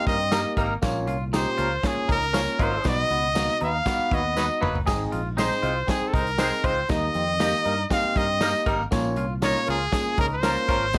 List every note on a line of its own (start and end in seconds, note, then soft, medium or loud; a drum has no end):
0.00 0.14 A#3 medium
0.00 0.29 C4 loud
0.00 0.15 D#4 medium
0.00 0.15 G4 medium
0.00 0.15 D#5 medium
0.06 0.44 G2 loud
0.06 0.17 G3 medium
0.06 0.18 A#3 medium
0.06 0.17 D#4 medium
0.06 0.18 A#4 medium
0.06 0.54 D#5 loud
0.06 kick loud
0.06 closed hi-hat medium
0.20 closed hi-hat soft
0.31 0.40 G3 loud
0.31 0.65 A#3 medium
0.31 0.40 A#3 loud
0.31 0.40 D#4 loud
0.31 0.65 D#4 medium
0.31 0.65 G4 medium
0.31 0.40 A#4 loud
0.31 0.66 A#4 medium
0.31 snare loud
0.31 closed hi-hat loud
0.31 tambourine loud
0.57 0.76 G#1 medium
0.57 0.74 G3 medium
0.57 0.73 A#3 medium
0.57 0.74 A#3 loud
0.57 0.74 D#4 loud
0.57 0.74 A#4 loud
0.57 kick medium
0.57 closed hi-hat medium
0.82 1.08 A#1 loud
0.82 1.55 A#2 medium
0.82 1.15 A#3 medium
0.82 0.98 A#3 loud
0.82 1.16 C#4 medium
0.82 1.16 F4 medium
0.82 1.16 C#5 loud
0.82 kick loud
0.82 snare loud
0.82 closed hi-hat loud
0.82 tambourine medium
1.07 1.45 C2 medium
1.07 1.24 F4 medium
1.07 closed hi-hat medium
1.33 1.66 A#3 medium
1.33 1.66 C#4 medium
1.33 1.49 D#4 medium
1.33 1.66 F4 medium
1.33 1.67 G4 medium
1.33 1.88 C5 loud
1.33 snare loud
1.33 closed hi-hat loud
1.33 tambourine loud
1.58 1.77 C#2 medium
1.58 1.69 F3 medium
1.58 1.69 A#3 medium
1.58 1.69 C#4 medium
1.58 1.74 F4 medium
1.58 1.69 A#4 loud
1.58 closed hi-hat medium
1.83 2.16 A#3 medium
1.83 2.17 C#4 medium
1.83 2.17 F4 medium
1.83 2.11 G#4 medium
1.83 2.17 C#5 medium
1.83 kick medium
1.83 snare loud
1.83 closed hi-hat medium
1.83 tambourine medium
1.97 muted fingered electric bass stroke soft
2.08 2.46 C#2 loud
2.08 2.19 F3 medium
2.08 2.20 A#3 medium
2.08 2.20 C#4 medium
2.08 2.25 D#4 medium
2.08 2.20 A#4 medium
2.08 2.64 A#4 loud
2.08 kick loud
2.08 closed hi-hat medium
2.22 closed hi-hat medium
2.33 2.42 F3 loud
2.33 2.42 A#3 loud
2.33 2.67 A#3 medium
2.33 2.42 C#4 medium
2.33 2.67 C#4 medium
2.33 2.68 F4 medium
2.33 2.42 A#4 loud
2.33 2.68 C#5 medium
2.33 snare loud
2.33 closed hi-hat loud
2.33 tambourine loud
2.47 closed hi-hat medium
2.59 2.78 G#1 medium
2.59 2.92 F#3 medium
2.59 2.92 A#3 medium
2.59 2.92 D#4 loud
2.59 2.76 F4 medium
2.59 2.92 A#4 loud
2.59 2.86 C5 medium
2.59 kick loud
2.59 closed hi-hat medium
2.84 3.03 B1 loud
2.84 3.57 B2 medium
2.84 3.18 B3 medium
2.84 3.01 B3 medium
2.84 3.18 D#4 medium
2.84 3.18 F#4 medium
2.84 3.19 D#5 medium
2.84 kick loud
2.84 snare loud
2.84 closed hi-hat medium
2.84 tambourine medium
2.88 3.59 D#5 loud
3.10 3.48 C#2 medium
3.10 3.26 B3 medium
3.10 closed hi-hat medium
3.34 3.51 A#3 medium
3.34 3.68 B3 medium
3.34 3.68 D#4 medium
3.34 3.69 F#4 medium
3.34 3.69 D#5 medium
3.34 snare loud
3.34 closed hi-hat medium
3.34 tambourine loud
3.49 snare soft
3.60 3.80 D#2 medium
3.60 3.72 F#3 medium
3.60 3.72 B3 medium
3.60 3.71 D#4 medium
3.60 3.77 D#4 medium
3.60 3.72 B4 medium
3.60 4.16 F5 loud
3.60 closed hi-hat medium
3.85 4.19 B3 medium
3.85 4.34 B3 loud
3.85 4.19 D#4 medium
3.85 4.19 F#4 medium
3.85 4.20 F5 medium
3.85 kick loud
3.85 snare medium
3.85 closed hi-hat medium
3.85 tambourine medium
3.99 muted fingered electric bass stroke soft
4.11 4.48 D#2 loud
4.11 4.22 F#3 medium
4.11 4.23 B3 medium
4.11 4.22 D#4 medium
4.11 4.23 B4 loud
4.11 4.63 D#5 loud
4.11 kick loud
4.11 closed hi-hat medium
4.36 4.45 F#3 medium
4.36 4.69 B3 medium
4.36 4.45 B3 loud
4.36 4.69 D#4 medium
4.36 4.45 D#4 loud
4.36 4.70 F#4 medium
4.36 4.45 B4 loud
4.36 4.70 D#5 medium
4.36 snare medium
4.36 tambourine loud
4.61 4.81 F#1 medium
4.61 4.77 F#3 medium
4.61 4.77 A#3 loud
4.61 4.78 B3 loud
4.61 4.78 D#4 loud
4.61 4.78 B4 loud
4.61 mid tom loud
4.75 floor tom medium
4.86 5.06 G#1 loud
4.86 5.59 G#2 medium
4.86 5.20 C4 medium
4.86 5.20 D#4 medium
4.86 5.02 G#4 loud
4.86 5.20 G#4 medium
4.86 5.21 D#5 loud
4.86 kick loud
4.86 snare loud
4.86 tambourine medium
4.86 splash medium
5.12 5.50 A#1 medium
5.12 5.28 F4 medium
5.12 closed hi-hat medium
5.37 5.70 C4 medium
5.37 5.53 D#4 medium
5.37 5.70 D#4 medium
5.37 5.48 D#4 medium
5.37 5.71 G#4 medium
5.37 5.49 G#4 loud
5.37 5.85 C5 loud
5.37 5.49 C5 medium
5.37 5.71 D#5 medium
5.37 snare loud
5.37 closed hi-hat loud
5.37 tambourine loud
5.52 snare soft
5.63 5.82 C2 loud
5.63 5.74 G#3 medium
5.63 5.74 C4 medium
5.63 5.74 D#4 medium
5.63 5.79 F4 medium
5.63 5.74 C5 loud
5.63 closed hi-hat medium
5.87 6.21 C4 medium
5.87 6.21 D#4 medium
5.87 6.21 G#4 medium
5.87 6.09 G#4 medium
5.87 6.22 C5 medium
5.87 kick medium
5.87 snare loud
5.87 closed hi-hat medium
5.87 tambourine medium
6.02 muted fingered electric bass stroke soft
6.08 6.15 A4 medium
6.13 6.51 C2 loud
6.13 6.24 G#3 medium
6.13 6.25 C4 medium
6.13 6.29 D#4 medium
6.13 6.25 D#4 medium
6.13 6.67 A#4 loud
6.13 6.25 C5 medium
6.13 kick loud
6.13 closed hi-hat medium
6.27 closed hi-hat medium
6.38 6.47 G#3 medium
6.38 6.71 C4 medium
6.38 6.47 C4 loud
6.38 6.72 D#4 medium
6.38 6.49 D#4 medium
6.38 6.47 D#4 loud
6.38 6.72 G#4 medium
6.38 6.50 G#4 medium
6.38 6.47 C5 loud
6.38 6.50 C5 medium
6.38 6.72 D#5 medium
6.38 snare loud
6.38 closed hi-hat loud
6.38 tambourine loud
6.52 closed hi-hat medium
6.64 6.83 C#2 medium
6.64 6.81 G#3 loud
6.64 6.81 C4 loud
6.64 6.80 D#4 medium
6.64 6.80 F4 loud
6.64 6.81 C5 loud
6.64 6.90 C5 medium
6.64 kick medium
6.64 closed hi-hat medium
6.89 7.08 D#2 loud
6.89 7.61 D#3 medium
6.89 7.22 A#3 medium
6.89 7.22 D#4 medium
6.89 7.06 D#4 medium
6.89 7.23 G4 medium
6.89 7.87 D#5 loud
6.89 7.23 D#5 medium
6.89 kick loud
6.89 snare loud
6.89 closed hi-hat loud
6.89 tambourine medium
7.14 7.52 F2 medium
7.14 7.31 C4 medium
7.14 closed hi-hat medium
7.39 7.73 A#3 medium
7.39 7.56 A#3 medium
7.39 7.50 D#4 medium
7.39 7.73 D#4 medium
7.39 7.51 G4 loud
7.39 7.73 G4 medium
7.39 7.51 A#4 loud
7.39 7.74 D#5 medium
7.39 snare loud
7.39 closed hi-hat loud
7.39 tambourine loud
7.64 7.84 G2 loud
7.64 7.77 G3 medium
7.64 7.76 A#3 medium
7.64 7.81 D#4 medium
7.64 7.76 D#4 medium
7.64 7.76 A#4 loud
7.64 closed hi-hat medium
7.90 8.23 A#3 medium
7.90 8.38 C4 medium
7.90 8.24 D#4 medium
7.90 8.24 G4 medium
7.90 8.24 D#5 medium
7.90 8.19 F5 loud
7.90 kick medium
7.90 snare medium
7.90 closed hi-hat medium
7.90 tambourine medium
8.04 muted fingered electric bass stroke medium
8.16 8.53 G2 loud
8.16 8.27 G3 medium
8.16 8.27 A#3 medium
8.16 8.27 D#4 medium
8.16 8.27 A#4 medium
8.16 8.67 D#5 loud
8.16 kick loud
8.16 closed hi-hat medium
8.40 8.50 G3 loud
8.40 8.74 A#3 medium
8.40 8.50 A#3 loud
8.40 8.52 D#4 medium
8.40 8.74 D#4 medium
8.40 8.50 D#4 loud
8.40 8.74 G4 medium
8.40 8.52 G4 medium
8.40 8.50 A#4 loud
8.40 8.53 A#4 loud
8.40 8.75 D#5 medium
8.40 snare loud
8.40 closed hi-hat medium
8.40 tambourine loud
8.54 closed hi-hat medium
8.66 8.85 G#1 medium
8.66 8.83 G3 loud
8.66 8.82 A#3 medium
8.66 8.83 A#3 loud
8.66 8.83 D#4 loud
8.66 8.83 A#4 loud
8.66 kick loud
8.66 closed hi-hat medium
8.91 9.17 A#1 loud
8.91 9.64 A#2 medium
8.91 9.24 A#3 medium
8.91 9.08 A#3 loud
8.91 9.25 C#4 medium
8.91 9.25 F4 medium
8.91 9.25 C#5 loud
8.91 kick loud
8.91 snare loud
8.91 closed hi-hat loud
8.91 tambourine medium
9.16 9.54 C2 loud
9.16 9.33 F4 medium
9.16 closed hi-hat medium
9.42 9.75 A#3 medium
9.42 9.75 C#4 medium
9.42 9.53 C#4 medium
9.42 9.58 D#4 medium
9.42 9.76 F4 medium
9.42 9.54 F4 loud
9.42 9.54 A#4 loud
9.42 9.76 C#5 medium
9.42 9.67 C#5 loud
9.42 snare loud
9.42 closed hi-hat loud
9.42 tambourine loud
9.55 snare soft
9.66 9.87 C#2 medium
9.66 9.78 F3 medium
9.66 9.78 A#3 medium
9.66 9.78 C#4 medium
9.66 9.84 F4 medium
9.66 10.16 G#4 loud
9.66 9.78 A#4 medium
9.66 closed hi-hat medium
9.92 10.25 A#3 medium
9.92 10.26 C#4 medium
9.92 10.26 F4 medium
9.92 10.26 G#4 medium
9.92 kick medium
9.92 snare loud
9.92 closed hi-hat medium
9.92 tambourine medium
10.06 muted fingered electric bass stroke soft
10.18 10.56 C#2 loud
10.18 10.29 F3 medium
10.18 10.29 A#3 medium
10.18 10.29 C#4 medium
10.18 10.35 D#4 medium
10.18 10.29 A#4 loud
10.18 10.26 A#4 loud
10.18 kick loud
10.18 closed hi-hat medium
10.34 10.98 C5 loud
10.43 10.52 F3 medium
10.43 10.76 A#3 medium
10.43 10.51 A#3 loud
10.43 10.51 C#4 loud
10.43 10.76 C#4 medium
10.43 10.54 C#4 medium
10.43 10.77 F4 medium
10.43 10.55 F4 medium
10.43 10.51 A#4 loud
10.43 10.77 A#4 medium
10.43 10.55 A#4 medium
10.43 snare loud
10.43 closed hi-hat loud
10.43 tambourine loud
10.68 10.94 G#1 medium
10.68 10.85 F3 medium
10.68 10.85 A#3 loud
10.68 10.85 C#4 loud
10.68 10.85 F4 medium
10.68 10.85 A#4 loud
10.68 kick loud
10.68 closed hi-hat medium
10.93 10.98 B1 loud
10.93 10.98 B2 medium
10.93 10.98 B3 medium
10.93 10.98 D#4 medium
10.93 kick loud
10.93 snare loud
10.93 closed hi-hat medium
10.93 tambourine medium